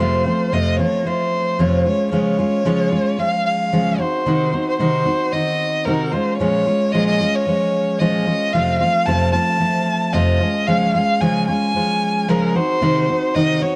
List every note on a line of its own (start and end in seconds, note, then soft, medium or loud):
0.00 0.26 F2 medium
0.00 0.26 C3 medium
0.00 0.26 F3 medium
0.00 0.26 A3 medium
0.00 0.25 C4 medium
0.00 0.24 F4 medium
0.00 0.54 C5 medium
0.26 0.52 F3 soft
0.26 0.52 A3 soft
0.26 0.53 C4 soft
0.26 0.52 F4 soft
0.52 0.79 F2 medium
0.52 0.79 C3 medium
0.52 0.79 F3 medium
0.52 0.79 A3 medium
0.52 0.78 C4 medium
0.52 0.77 F4 medium
0.52 0.79 D#5 medium
0.79 1.04 F3 soft
0.79 1.05 A3 soft
0.79 1.06 C4 soft
0.79 1.06 F4 soft
0.79 1.08 C#5 medium
1.05 1.59 F3 soft
1.05 1.58 A3 soft
1.05 1.59 C4 soft
1.05 1.60 F4 medium
1.05 1.61 C5 medium
1.59 1.86 F2 medium
1.59 1.86 C3 medium
1.59 1.86 F3 medium
1.59 1.86 A3 medium
1.59 1.86 C4 medium
1.59 1.84 F4 medium
1.59 1.86 C#5 medium
1.85 2.11 G#3 soft
1.85 2.11 C#4 soft
1.85 2.12 F4 soft
1.85 2.11 C#5 medium
2.11 2.39 C#3 medium
2.11 2.39 F3 medium
2.11 2.39 G#3 medium
2.11 2.38 C#4 medium
2.11 2.37 F4 medium
2.11 3.20 C#5 medium
2.39 2.64 G#3 soft
2.39 2.65 C#4 soft
2.39 2.65 F4 medium
2.65 2.92 C#3 medium
2.65 2.92 F3 medium
2.65 2.92 G#3 medium
2.65 2.91 C#4 medium
2.65 2.90 F4 medium
2.91 3.18 G#3 soft
2.91 3.18 C#4 medium
2.91 3.19 F4 medium
3.18 3.72 F3 medium
3.18 3.72 G#3 soft
3.18 3.72 C#4 soft
3.18 3.73 F4 medium
3.18 3.45 F5 medium
3.46 4.01 F5 medium
3.72 3.99 C#3 medium
3.72 3.99 F3 medium
3.72 4.00 G#3 medium
3.72 3.99 C#4 medium
3.72 3.98 F4 medium
3.98 4.25 C4 soft
3.98 4.26 D#4 soft
3.98 4.26 F#4 soft
3.98 4.68 C5 medium
4.26 4.53 C3 medium
4.26 4.53 D#3 medium
4.26 4.53 C4 medium
4.26 4.52 D#4 medium
4.26 4.51 F#4 medium
4.53 4.79 C4 soft
4.53 4.79 D#4 soft
4.53 4.79 F#4 soft
4.69 4.79 C5 medium
4.79 5.06 C3 medium
4.79 5.07 D#3 medium
4.79 5.06 C4 medium
4.79 5.05 D#4 medium
4.79 5.04 F#4 medium
4.79 5.34 C5 medium
5.05 5.32 C4 soft
5.05 5.33 D#4 medium
5.05 5.33 F#4 medium
5.33 5.85 D#3 soft
5.33 5.86 C4 medium
5.33 5.86 D#4 medium
5.33 5.86 F#4 medium
5.33 5.87 D#5 medium
5.85 6.13 C3 medium
5.85 6.13 D#3 medium
5.85 6.14 C4 medium
5.85 6.13 D#4 medium
5.85 6.12 F#4 medium
5.85 6.13 A#4 medium
6.12 6.39 G#3 soft
6.12 6.40 C#4 soft
6.12 6.40 F4 medium
6.12 6.37 C5 medium
6.38 6.67 A#2 medium
6.38 6.67 F3 medium
6.38 6.67 G#3 medium
6.38 6.66 C#4 medium
6.38 6.65 F4 medium
6.38 6.93 C#5 medium
6.66 6.93 G#3 soft
6.66 6.94 C#4 soft
6.66 6.93 F4 medium
6.92 7.20 A#2 medium
6.92 7.21 F3 medium
6.92 7.21 G#3 medium
6.92 7.20 C#4 medium
6.92 7.19 F4 medium
6.92 7.07 D#5 medium
7.08 7.37 D#5 medium
7.20 7.46 G#3 soft
7.20 7.46 C#4 soft
7.20 7.47 F4 medium
7.35 8.00 C#5 medium
7.47 8.00 F3 medium
7.47 8.00 G#3 soft
7.47 8.00 C#4 medium
7.47 8.01 F4 soft
7.99 8.27 A#2 medium
7.99 8.27 F3 medium
7.99 8.27 G#3 medium
7.99 8.27 C#4 medium
7.99 8.26 F4 medium
7.99 8.54 D#5 medium
8.27 8.54 G#3 soft
8.27 8.54 C#4 soft
8.27 8.54 F4 medium
8.53 8.81 F2 medium
8.53 8.81 C3 medium
8.53 8.81 F3 medium
8.53 8.81 A3 medium
8.53 8.80 C4 medium
8.53 8.79 F4 medium
8.53 8.78 F5 medium
8.79 9.06 F3 soft
8.79 9.07 A3 soft
8.79 9.07 C4 soft
8.79 9.07 F4 soft
8.79 9.07 F5 medium
9.06 9.34 F2 medium
9.06 9.34 C3 medium
9.06 9.34 F3 medium
9.06 9.33 A3 medium
9.06 9.33 C4 medium
9.06 9.32 F4 medium
9.06 9.32 A5 medium
9.32 9.59 F3 soft
9.32 9.59 A3 soft
9.32 9.60 C4 soft
9.32 9.60 F4 medium
9.32 10.14 A5 medium
9.60 10.14 F3 medium
9.60 10.13 A3 medium
9.60 10.13 C4 soft
9.60 10.14 F4 medium
10.13 10.41 F2 medium
10.13 10.41 C3 medium
10.13 10.41 F3 medium
10.13 10.41 A3 medium
10.13 10.41 C4 medium
10.13 10.39 F4 medium
10.13 10.68 D#5 medium
10.40 10.67 G#3 soft
10.40 10.68 C#4 soft
10.40 10.67 F4 medium
10.67 10.95 C#3 medium
10.67 10.95 F3 medium
10.67 10.95 G#3 medium
10.67 10.94 C#4 medium
10.67 10.93 F4 medium
10.67 10.93 F5 medium
10.93 11.21 G#3 soft
10.93 11.21 C#4 soft
10.93 11.21 F4 soft
10.93 11.22 F5 medium
11.21 11.48 C#3 medium
11.21 11.48 F3 medium
11.21 11.49 G#3 medium
11.21 11.48 C#4 medium
11.21 11.47 F4 medium
11.21 11.47 G#5 medium
11.48 11.74 G#3 soft
11.48 11.75 C#4 medium
11.48 11.75 F4 soft
11.48 12.30 G#5 medium
11.75 12.28 F3 medium
11.75 12.28 G#3 medium
11.75 12.28 C#4 medium
11.75 12.29 F4 medium
12.28 12.55 C#3 medium
12.28 12.56 F3 medium
12.28 12.56 G#3 medium
12.28 12.56 C#4 medium
12.28 12.55 F4 medium
12.28 12.57 A#4 medium
12.55 12.81 C4 soft
12.55 12.81 D#4 soft
12.55 12.82 F#4 soft
12.55 13.36 C5 medium
12.81 13.09 C3 medium
12.81 13.09 D#3 medium
12.81 13.09 C4 medium
12.81 13.08 D#4 medium
12.81 13.07 F#4 medium
13.09 13.35 C4 soft
13.09 13.35 D#4 soft
13.09 13.35 F#4 soft
13.35 13.62 C3 medium
13.35 13.62 D#3 medium
13.35 13.63 C4 medium
13.35 13.62 D#4 medium
13.35 13.61 F#4 medium
13.35 13.63 D#5 medium
13.62 13.76 C4 soft
13.62 13.76 D#4 soft
13.62 13.76 F#4 medium
13.62 13.76 C#5 medium